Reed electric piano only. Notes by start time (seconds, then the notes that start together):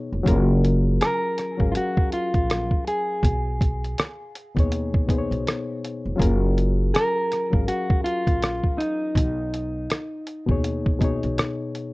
Already playing: B2 B3 D#4 G#4 C#5
0.23 F#3 C#4 F4 G#4
0.28 A#4
1.57 F#3 C#4 G#4 F5
1.62 A#4
4.55 B2 B3 D#4 G#4
4.60 C#5
5.07 B2 B3 D#4 G#4
5.12 C5
5.18 C#5
6.16 F#3 C#4 F4 G#4
6.21 A#4
7.50 F#3 C#4 G#4 F5
7.55 A#4
10.46 B2 B3 D#4 G#4
10.51 C#5
10.99 B2 B3 D#4
11.03 G#4 C#5